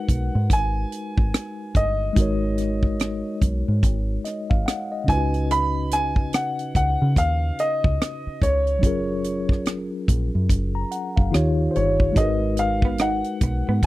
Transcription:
0.00 2.10 G#3 medium
0.00 2.11 D#4 medium
0.00 2.12 F#4 soft
0.00 2.14 A#4 medium
0.00 2.14 B4 medium
0.00 0.47 F#5 medium
0.09 0.29 B1 medium
0.09 kick medium
0.09 closed hi-hat medium
0.35 0.47 G#2 medium
0.50 0.84 G#1 medium
0.50 1.80 G#5 medium
0.50 kick medium
0.50 closed hi-hat medium
0.92 closed hi-hat medium
1.18 1.31 G#1 medium
1.18 kick medium
1.34 cross-stick loud
1.34 closed hi-hat medium
1.75 2.09 G1 medium
1.75 3.38 D#5 medium
1.75 kick medium
1.75 closed hi-hat medium
2.13 5.02 G#3 medium
2.13 5.03 D#4 medium
2.13 kick loud
2.13 closed hi-hat medium
2.17 3.21 G#1 medium
2.17 5.04 F#4 soft
2.17 5.05 A#4 medium
2.21 5.06 C#5 medium
2.58 cross-stick soft
2.58 closed hi-hat medium
2.83 kick medium
3.00 cross-stick medium
3.00 closed hi-hat medium
3.42 3.62 B1 medium
3.42 kick medium
3.42 closed hi-hat medium
3.68 3.81 G#2 medium
3.83 4.17 G#1 medium
3.83 kick medium
3.83 closed hi-hat medium
4.25 4.49 D#5 soft
4.25 cross-stick soft
4.25 closed hi-hat medium
4.50 4.64 G#1 medium
4.50 4.66 F5 medium
4.50 kick medium
4.66 4.90 F#5 medium
4.66 cross-stick loud
4.66 closed hi-hat medium
4.92 5.31 D#5 soft
5.04 8.35 C#3 medium
5.04 8.36 C#4 soft
5.08 6.29 C#2 medium
5.08 8.37 D#4 soft
5.08 5.17 F4 soft
5.08 5.47 G#5 medium
5.08 kick medium
5.08 closed hi-hat medium
5.12 8.39 B4 medium
5.17 8.42 F#4 soft
5.34 closed hi-hat soft
5.51 5.93 B5 loud
5.51 closed hi-hat medium
5.91 6.31 G#5 medium
5.91 cross-stick soft
5.91 closed hi-hat medium
6.16 kick medium
6.33 6.73 F#5 medium
6.33 cross-stick medium
6.33 closed hi-hat medium
6.59 closed hi-hat soft
6.75 6.95 C#2 medium
6.75 7.14 F#5 medium
6.75 kick medium
6.75 closed hi-hat medium
7.02 7.14 C#3 medium
7.16 7.50 D#2 medium
7.16 7.60 F5 medium
7.16 kick medium
7.16 closed hi-hat medium
7.59 8.45 D#5 medium
7.59 closed hi-hat medium
7.84 7.97 C#2 medium
7.84 kick medium
8.02 cross-stick loud
8.02 closed hi-hat medium
8.27 muted fingered electric bass stroke soft
8.42 8.84 C#2 medium
8.42 9.63 C#5 medium
8.42 kick medium
8.42 closed hi-hat soft
8.67 closed hi-hat soft
8.79 11.27 F#3 medium
8.79 11.28 C#4 medium
8.83 9.88 F#1 medium
8.83 11.29 F4 soft
8.83 11.30 G#4 medium
8.83 kick medium
8.83 closed hi-hat medium
8.87 11.31 A#4 medium
9.24 closed hi-hat medium
9.49 kick medium
9.49 cross-stick soft
9.66 cross-stick medium
9.66 closed hi-hat medium
10.08 10.29 A#1 medium
10.08 kick medium
10.08 closed hi-hat medium
10.35 10.47 F#2 medium
10.49 10.83 F#1 medium
10.49 kick medium
10.49 closed hi-hat medium
10.75 10.91 A#5 soft
10.91 11.15 F#5 medium
10.91 closed hi-hat medium
11.16 11.31 F#1 medium
11.16 11.56 F5 medium
11.16 kick medium
11.31 11.67 D#2 medium
11.31 12.15 D#3 medium
11.31 12.13 D#4 medium
11.31 12.16 F4 medium
11.31 12.17 G4 medium
11.31 cross-stick medium
11.31 closed hi-hat medium
11.35 12.17 C#5 medium
11.71 11.75 C5 soft
11.76 12.09 G1 medium
11.76 12.14 C#5 medium
11.76 closed hi-hat soft
12.00 kick medium
12.12 13.86 G#3 medium
12.12 13.86 D#4 medium
12.12 kick loud
12.16 13.21 G#1 medium
12.16 12.38 G#3 medium
12.16 13.86 F#4 medium
12.16 13.86 A#4 medium
12.16 12.60 D#5 medium
12.16 closed hi-hat medium
12.21 13.86 B4 medium
12.57 13.01 F5 medium
12.57 muted clean electric guitar stroke soft
12.57 closed hi-hat medium
12.82 12.98 B3 medium
12.82 kick medium
12.98 13.21 D#4 medium
12.98 13.86 F#5 medium
12.98 cross-stick medium
12.98 closed hi-hat medium
13.24 closed hi-hat soft
13.41 13.62 B1 medium
13.41 muted clean electric guitar stroke soft
13.41 kick medium
13.41 closed hi-hat medium
13.68 13.81 G#2 medium
13.68 13.81 B3 medium
13.83 kick medium
13.83 closed hi-hat medium

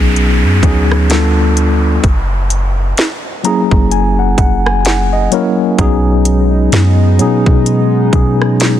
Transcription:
0.00 0.45 B1 loud
0.00 0.63 F#3 loud
0.00 0.63 B3 loud
0.00 0.64 C#4 loud
0.00 0.65 D#4 loud
0.00 0.65 G#4 loud
0.00 downlifter medium
0.16 closed hi-hat medium
0.43 0.62 F#2 loud
0.63 2.00 D2 loud
0.63 1.10 F#3 medium
0.63 1.09 B3 medium
0.63 1.10 C#4 medium
0.63 1.11 D#4 medium
0.63 1.11 G#4 medium
0.63 kick loud
0.63 closed hi-hat medium
0.92 cross-stick loud
1.09 1.88 G3 medium
1.09 1.88 B3 medium
1.09 1.88 D4 medium
1.09 1.89 F4 medium
1.09 1.89 A4 loud
1.09 snare loud
1.09 closed hi-hat medium
1.57 closed hi-hat medium
2.04 2.94 F#1 loud
2.04 kick loud
2.04 closed hi-hat medium
2.50 closed hi-hat medium
2.97 snare loud
2.97 closed hi-hat medium
3.43 4.63 F#3 medium
3.43 4.63 A#3 medium
3.43 4.63 C#4 medium
3.43 4.64 E4 medium
3.43 4.64 G#4 loud
3.43 3.88 A#5 medium
3.43 closed hi-hat medium
3.71 4.35 F#1 loud
3.71 kick loud
3.91 4.17 G#5 medium
3.91 closed hi-hat medium
4.19 4.37 F#5 medium
4.38 5.28 F#1 loud
4.38 4.64 F#5 medium
4.38 kick loud
4.38 closed hi-hat medium
4.66 4.84 G#5 medium
4.66 cross-stick loud
4.85 5.11 F#5 medium
4.85 snare loud
4.85 closed hi-hat medium
5.13 5.31 D#5 medium
5.31 5.63 F#3 medium
5.31 5.64 A#3 medium
5.31 5.64 C#4 medium
5.31 5.64 E4 medium
5.31 5.65 A#4 loud
5.31 5.76 C#5 medium
5.31 closed hi-hat medium
5.78 6.69 B1 loud
5.78 6.66 F#3 loud
5.78 8.80 G#3 medium
5.78 8.80 B3 medium
5.78 6.66 B3 loud
5.78 6.67 C#4 loud
5.78 8.80 D#4 medium
5.78 6.67 D#4 loud
5.78 6.67 G#4 loud
5.78 kick loud
5.78 closed hi-hat medium
6.25 closed hi-hat medium
6.72 7.21 F#2 loud
6.72 snare loud
6.72 closed hi-hat medium
7.19 7.45 B2 loud
7.19 7.78 F#3 medium
7.19 7.79 B3 medium
7.19 7.79 C#4 medium
7.19 7.79 D#4 medium
7.19 7.80 G#4 loud
7.19 closed hi-hat medium
7.46 8.10 B2 medium
7.46 kick medium
7.66 closed hi-hat medium
8.12 8.80 B2 loud
8.12 8.80 F#3 medium
8.12 8.80 B3 medium
8.12 8.80 C#4 medium
8.12 8.80 D#4 medium
8.12 8.80 G#4 medium
8.12 kick loud
8.12 closed hi-hat medium
8.42 cross-stick medium
8.60 snare loud
8.60 closed hi-hat medium

